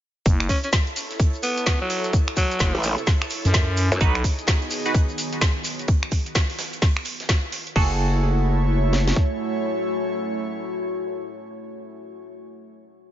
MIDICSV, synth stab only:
0, 0, Header, 1, 2, 480
1, 0, Start_track
1, 0, Tempo, 468750
1, 264, Time_signature, 4, 2, 24, 8
1, 13431, End_track
2, 0, Start_track
2, 0, Title_t, "Synth stab"
2, 0, Program_c, 0, 62
2, 4104, Note_on_c, 0, 63, 100
2, 4104, Note_on_c, 0, 66, 91
2, 4104, Note_on_c, 0, 71, 109
2, 4238, Note_off_c, 0, 63, 0
2, 4238, Note_off_c, 0, 66, 0
2, 4238, Note_off_c, 0, 71, 0
2, 4972, Note_on_c, 0, 66, 70
2, 4973, Note_on_c, 0, 63, 79
2, 4973, Note_on_c, 0, 71, 83
2, 5055, Note_off_c, 0, 63, 0
2, 5055, Note_off_c, 0, 66, 0
2, 5055, Note_off_c, 0, 71, 0
2, 7944, Note_on_c, 0, 69, 99
2, 7945, Note_on_c, 0, 66, 90
2, 7945, Note_on_c, 0, 68, 82
2, 12536, Note_off_c, 0, 66, 0
2, 12536, Note_off_c, 0, 68, 0
2, 12536, Note_off_c, 0, 69, 0
2, 13431, End_track
0, 0, End_of_file